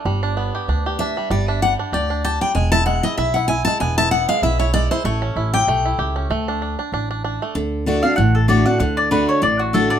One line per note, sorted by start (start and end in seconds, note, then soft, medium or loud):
0.00 0.23 D4 medium
0.05 0.50 G1 loud
0.05 1.17 G3 medium
0.23 0.65 D4 medium
0.37 1.77 B3 medium
0.55 0.85 G4 medium
0.68 1.13 D2 medium
0.68 0.99 D4 medium
0.86 1.28 G4 medium
0.99 1.45 D4 medium
0.99 1.28 E5 loud
1.17 1.29 G3 medium
1.30 1.75 G1 medium
1.30 1.61 G3 medium
1.30 1.48 D5 medium
1.48 1.78 D4 medium
1.48 1.61 E5 loud
1.62 2.07 G3 medium
1.62 1.72 F#5 loud
1.79 2.09 D4 medium
1.92 2.37 D2 medium
1.92 2.23 G4 medium
1.92 2.23 D5 medium
2.10 2.53 D4 medium
2.24 2.56 G4 medium
2.24 2.41 A5 loud
2.41 2.55 G3 medium
2.41 2.54 G5 medium
2.55 3.00 E1 loud
2.55 2.86 G#3 medium
2.55 2.71 G#5 medium
2.72 3.04 E4 medium
2.72 2.85 A5 loud
2.86 3.32 G#3 medium
2.86 3.03 F#5 medium
3.03 3.18 E4 medium
3.03 3.17 D#5 loud
3.18 3.62 B1 medium
3.18 3.36 E4 medium
3.18 3.35 E5 medium
3.34 3.49 E4 medium
3.34 3.47 F#5 medium
3.48 3.97 E4 medium
3.48 3.64 G#5 loud
3.65 4.09 G#3 medium
3.65 3.79 A5 loud
3.80 4.25 E1 medium
3.80 4.10 B3 medium
3.80 3.97 G#5 medium
3.98 4.40 E4 medium
3.98 4.11 A5 loud
4.11 4.57 B3 medium
4.11 4.28 F#5 medium
4.29 4.71 G#3 medium
4.29 4.42 F5 loud
4.42 4.87 B1 medium
4.42 4.58 E4 medium
4.42 4.60 E5 medium
4.59 4.90 E4 medium
4.59 4.73 C#5 medium
4.74 5.05 G#3 medium
4.74 4.91 D5 loud
4.91 5.05 E4 medium
4.91 5.05 C5 medium
5.04 5.27 A1 loud
5.04 5.57 A3 medium
5.04 5.50 C#5 medium
5.22 5.65 C#4 medium
5.36 5.63 A1 medium
5.36 5.82 E4 medium
5.54 5.96 G4 medium
5.54 6.26 G5 loud
5.67 5.94 B1 medium
5.67 6.30 A3 medium
5.86 6.28 E4 medium
5.98 6.25 C#2 medium
5.98 6.30 G4 medium
6.16 6.30 C#4 medium
6.30 6.75 D2 loud
6.30 6.76 A3 medium
6.48 6.61 D4 medium
6.62 6.78 D4 medium
6.79 6.92 D4 medium
6.92 7.37 A1 medium
6.92 7.09 D4 medium
7.11 7.23 D4 medium
7.24 7.56 D4 medium
7.42 7.56 A3 medium
7.55 8.00 D2 medium
7.55 7.85 D3 medium
7.86 8.03 D3 medium
7.86 8.03 A3 medium
7.86 8.04 D4 loud
7.86 8.02 F#4 loud
8.03 8.18 D4 medium
8.03 8.17 F#4 medium
8.03 8.16 F5 medium
8.16 8.62 A1 medium
8.16 8.78 A2 medium
8.16 8.34 F#5 loud
8.35 8.48 A4 medium
8.48 8.65 D3 medium
8.48 8.66 A3 medium
8.48 8.66 D4 loud
8.48 8.65 F#4 loud
8.48 8.66 D5 medium
8.66 8.80 D4 medium
8.66 8.80 F#4 medium
8.66 8.78 F#5 medium
8.80 9.25 D2 loud
8.80 9.10 D3 medium
8.80 8.97 F#5 medium
8.97 9.11 D5 medium
9.11 9.41 D3 medium
9.11 9.41 A3 medium
9.11 9.42 D4 medium
9.11 9.42 F#4 medium
9.11 9.28 B4 medium
9.29 9.42 C#5 medium
9.42 9.88 A1 medium
9.42 9.99 A2 medium
9.42 9.60 D5 loud
9.59 9.74 F#4 medium
9.73 9.99 D3 medium
9.73 9.99 A3 medium
9.73 9.99 D4 loud
9.73 9.99 F#4 loud
9.73 9.90 A4 medium
9.90 9.99 D5 loud